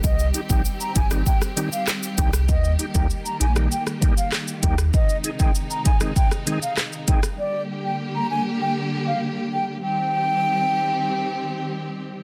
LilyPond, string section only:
\new Staff \with { instrumentName = "String section" } { \time 4/4 \key c \minor \tempo 4 = 98 << { <ees g g'>1~ | <ees g g'>1 | <c ees'>1 | <d g g'>1 |
<ees g c' g'>1 | } \\ { c'1 | bes1 | aes1 | bes1 |
r1 | } >> }